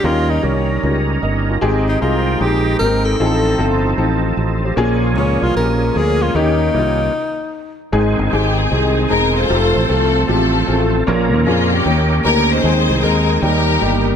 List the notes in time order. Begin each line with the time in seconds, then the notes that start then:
Already playing: A#3
0.02 D#2 D#3 G3 C#4 D#4 F4 G4 A#4
0.30 D#4
0.43 C2 C#4 D#4 G4 A#4
0.83 C#2 C#4 D#4 F4 A#4
0.88 G4
1.23 G1 A#4 D#5
1.49 F4 A#4
1.61 G#1 G#2 G#3 C4 D#4 G4 G#4
1.89 D#4
2.01 C2 C4 D#4 F4 G4 G#4
2.41 A#1 C4 D#4 G4 G#4
2.79 G#1 A#3 D#4 G4 A#4
2.85 C4
3.04 A4
3.20 A1 A2 F3 A3 C4 D#4 F4 G#4 A4
3.25 A4
3.58 G1 C4 D#4 F4 A4
3.98 A1 C4 D#4 F4 A4
4.37 A1 D#4 A4
4.65 G4 C5
4.76 A#1 A#2 F3 G#3 A#3 C#4 F4 G4 G#4
4.81 G#4
5.16 C#2 A#3 C#4 F4 G#4
5.42 C2 F4
5.56 A#1 A#3 C#4 F4 G4 A#4
5.96 D2 A#3 C#4 F4 G#4 A#4
6.22 F4
6.35 D#2 D#3 G3 A#3 C#4 D#4 G4
6.74 C2 A#3 C#4 D#4 E4
6.79 F4
7.92 G#1 G#2 D#3 G#3 C4 D#4 G#4
8.19 G1
8.31 G#1 G#3 C4 D#4 G4 G#4
8.58 C4 D#4 G#4
8.71 C2 G#3 C4 D#4 G4
8.76 G#4
9.10 E1 G#3 C4 D#4 G#4 A#4
9.35 F4 A4 C5
9.49 F1 F3 A3 C4 F4 G4 A4
9.55 A4
9.76 A1
9.88 C2 A3 C4 F4 A4
10.27 A1 G#3 C4 F4 G4 A4
10.32 A3
10.67 A1 A3 C4 F4 G#4
10.73 A4
11.07 A#1 A#2 F3 A#3 C#4 F4 A#4
11.34 D#2
11.46 F2 A#3 C#4 F4 G#4
11.73 A#3 C#4 G4
11.85 D#2 D#3 A#3 C#4 D#4 G4
12.25 D2 A#3 C#4 D#4 G4 A#4
12.51 D#4 G#4 C5
12.64 D#2 D#3 G#3 C4 D#4 G4 G#4
12.69 G#4
12.90 C2
13.03 D#2 G#3 C4 D#4 A#4
13.42 D#2 D#3 G3 A#3 D#4 G4 A#4
13.81 G1 G3 A#3 D#4 G4